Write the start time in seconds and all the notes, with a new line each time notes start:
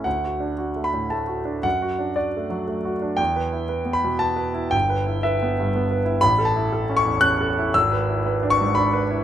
0.04 D2 F#5
0.24 F#4
0.40 D4
0.58 F#4
0.76 A3
0.84 B5
0.94 A2
1.10 A3 A5
1.27 F#4
1.45 D4
1.63 F#2 F#5
1.82 F#4
1.99 D4
2.16 F#4 D5
2.37 A3
2.50 F#3
2.68 A3
2.85 F#4
3.02 D4
3.17 E2 G5
3.36 B4
3.53 E4
3.69 B4
3.85 B3
3.93 B5
4.04 B2
4.19 B3 A5
4.37 B4
4.54 E4
4.71 G1 G5
4.90 B4
5.06 E4
5.23 B4 E5
5.42 B3
5.59 G2
5.76 B3
5.91 B4
6.05 E4
6.21 A1 B5
6.38 A4
6.45 A5
6.56 E4
6.72 A4
6.89 C#4
6.97 C#6
7.05 E2
7.21 C#4 F#6
7.41 A4
7.58 E4
7.74 G#1 E6
7.92 B4
8.09 E4
8.26 B4
8.43 D4
8.50 C#6
8.61 G#2
8.75 D4 B5
8.93 B4
9.11 E4